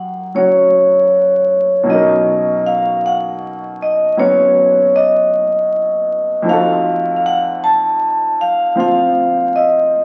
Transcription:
Already playing: F#2 F#3 E4 G4 A#4 F#5
0.35 F#3 C#4 F#4 C#5
1.83 B2 F#3
1.88 C#4 D#4 D#5
1.94 A#4
2.66 F5
3.06 F#5
3.82 D#5
4.17 F#3 B3 C#4 F#4 C#5
4.96 D#5
6.42 F2 F3
6.47 D#4 F#4 F5
6.53 A4
7.16 F5
7.26 F#5
7.64 A5
8.41 F5
8.75 F3 C4 F4
8.80 F5
9.56 D#5

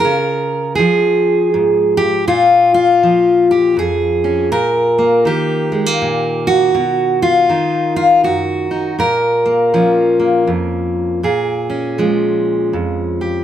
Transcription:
0.00 A#4
0.05 C#3
0.75 F3 G#4
1.54 G#2
1.97 G4
2.27 A#2 F4
2.74 F4
3.03 F3
3.51 G4
3.77 F2 G#4
4.24 C#4
4.52 A#2 A#4
4.98 A#3
5.25 D#3 G4
5.72 G#3
5.86 A#3
6.02 A#2
6.47 F#4
6.75 B2
7.22 F4
7.49 D#3 D#4
7.96 F4
8.24 F#2 F#4
8.71 D#4
8.99 A#2 A#4
9.46 A#3
9.74 F3 C#4
10.20 A#3
10.47 F2
11.23 A#2 G#4
11.70 C#4
11.98 F3 G#3
12.73 F2
13.21 G4

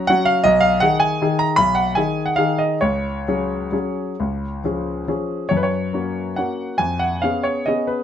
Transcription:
0.07 F#3 C#4 F#4 F#5
0.25 F5
0.44 B1 D#5
0.61 F5
0.80 D#3 D#4 G#4 F#5
1.00 G#5
1.21 D#3 D#4 G#4
1.39 A#5
1.56 B1 B5
1.75 F#5
1.95 D#3 D#4 G#4 G#5
2.26 F#5
2.36 D#3 D#4 G#4 F5
2.58 D#5
2.81 C#2 C#5
3.28 F#3 C#4 G#4
3.72 F#3 C#4 G#4
4.20 C#2
4.64 F3 C#4 G#4
5.08 F3 C#4 G#4
5.49 F#2 C#5
5.57 B4
5.63 C#5
5.93 A#3 C#4 F#4
6.36 A#3 C#4 F#4 F#5
6.78 F2 G#5
6.99 F#5
7.22 B3 C#4 G#4 F5
7.43 C#5
7.66 B3 C#4 G#4 D#5
7.87 B4

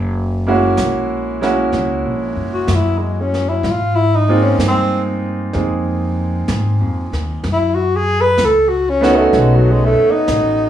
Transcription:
Already playing: F#1
0.47 G#3 A#3 C#4 E4 F#4
0.77 A#1, snare, hi-hat pedal
1.41 G#3 A#3 C#4 E4 F#4, snare
1.72 C#2, brush sweep, snare
2.05 A#1
2.36 F#1
2.53 F#4
2.67 F#2, snare, hi-hat pedal
2.75 E4
2.98 G#3
3.21 C#4
3.34 snare
3.48 E4
3.63 G#2, brush sweep, snare
3.70 F4
3.95 E4
4.15 D#4
4.28 G#3 A#3 C4 D#4 F4
4.43 C#4
4.58 G2, snare, hi-hat pedal
4.67 C4
5.53 F2 G#3 A#3 C4 D#4 G#4, brush sweep, snare
6.48 G#2, snare, hi-hat pedal
6.81 F2
7.12 D#2, snare
7.44 F#2, brush sweep, snare
7.53 E4
7.75 F#4
7.96 G#4
8.21 B4
8.38 C#2, snare, hi-hat pedal
8.45 A4
8.68 F#4
8.89 C#4
9.01 A3 B3 C#4 D#4 F#4, snare
9.16 A3
9.33 B1, brush sweep, snare
9.39 G#3
9.56 F#3
9.72 G#3
9.85 A3
9.98 muted upright bass stroke
10.11 D#4
10.28 A1, snare, hi-hat pedal

